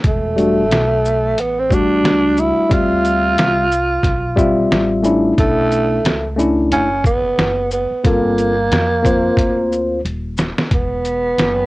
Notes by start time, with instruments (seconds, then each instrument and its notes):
0.04 upright bass E1, tenor saxophone A3, kick, closed hi-hat
0.36 tine electric piano G3 A3 D4 F#4, closed hi-hat, shaker
0.71 upright bass B1, snare, closed hi-hat
1.05 shaker
1.37 upright bass A1, tenor saxophone B3, closed hi-hat
1.59 tenor saxophone C4
1.70 tine electric piano G3 A3 D4 F#4, kick, shaker
1.74 tenor saxophone D4
2.04 upright bass C#2, snare, closed hi-hat
2.37 tenor saxophone E4, shaker
2.57 muted upright bass stroke
2.69 upright bass D2, tine electric piano G3 C4 F4 E5, tenor saxophone F4, kick, closed hi-hat
3.05 closed hi-hat, shaker
3.38 upright bass C2, snare, closed hi-hat
3.72 shaker
4.03 upright bass B1, kick, snare, closed hi-hat
4.36 tine electric piano G3 C4 F4 E5, kick, shaker
4.71 upright bass A1, snare, closed hi-hat
5.02 tine electric piano A3 C#4 D4 E4, shaker
5.38 upright bass B1, tenor saxophone A3, kick, closed hi-hat
5.71 closed hi-hat, shaker
6.04 upright bass C#2, snare, closed hi-hat
6.36 tine electric piano A3 C#4 D4 E4, shaker
6.71 upright bass F#1, tenor saxophone C#4, closed hi-hat
7.04 tenor saxophone B3, kick, shaker
7.38 upright bass F#1, snare, closed hi-hat
7.71 tenor saxophone B3, shaker
7.91 muted upright bass stroke
8.04 upright bass G1, tine electric piano A#3 C4 F4 A4, tenor saxophone A#3, kick, closed hi-hat
8.38 closed hi-hat, shaker
8.72 upright bass F2, snare, closed hi-hat
9.03 tine electric piano A#3 C4 F4 C5, kick, closed hi-hat, shaker
9.37 upright bass D2, kick, closed hi-hat
9.72 shaker
10.05 upright bass D#1, closed hi-hat
10.37 snare, shaker
10.58 muted upright bass stroke, snare
10.71 upright bass E1, tenor saxophone B3, kick, closed hi-hat
11.05 closed hi-hat, shaker
11.38 upright bass F#1, snare, closed hi-hat